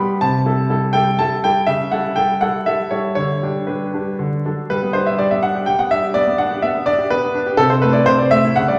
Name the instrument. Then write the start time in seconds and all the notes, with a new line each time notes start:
grand piano
Already playing: G3 B3 G4 B5
0.21 C3 A5
0.45 G3 E4 A4
0.70 G3 E4 A4
0.93 G3 E4 A4 G5
1.19 G3 E4 A4 A5
1.44 G3 E4 A4 G5
1.67 C#3 E5
1.92 G3 E4 A4 F#5
2.16 G3 E4 A4 G5
2.41 G3 E4 A4 F#5
2.66 G3 E4 A4 E5
2.91 G3 E4 A4 C#5
3.15 D3 C#5
3.42 G3 D4 G4
3.67 G3 D4 G4 B4
3.94 G3 D4 G4
4.19 D3
4.45 F#3 D4 A4
4.70 G3 B4
4.83 B3
4.93 D4 C5
5.06 G4 E5
5.18 G3 D5
5.31 B3 E5
5.43 D4 F#5
5.55 G4
5.66 G3 G5
5.79 B3 F#5
5.91 D4 E5
6.02 G4
6.14 B3 D5
6.27 B3
6.38 D4 F#5
6.51 G4
6.62 B3 E5
6.74 B3
6.86 D4 D5
6.99 G4
7.10 B3 B4
7.25 B3
7.34 D4
7.46 G4
7.57 C3 A4
7.70 C4 C5
7.82 A3 B4
7.93 E4 D5
8.06 C3 C5
8.18 C4 D5
8.31 A3 E5
8.45 E4
8.56 C#3 F#5
8.68 G3 D5